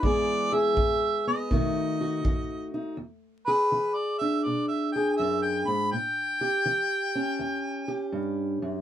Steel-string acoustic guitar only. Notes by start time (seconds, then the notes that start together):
0.02 E2 E3 G#3 B3 G#4
0.52 G#4
0.77 E3
1.27 B3
1.51 B2 D#3 A3 D#4 F#4
2.01 F#4
2.24 D#3
2.74 D#4
2.97 E2
3.48 G#4
3.72 E3
4.21 D4
4.46 B2
4.96 G#4
5.19 F#2
5.68 G#2
5.93 A2
6.41 G4
6.66 E3
7.15 C#4
7.39 E2
7.88 G4
8.12 G2
8.62 F#2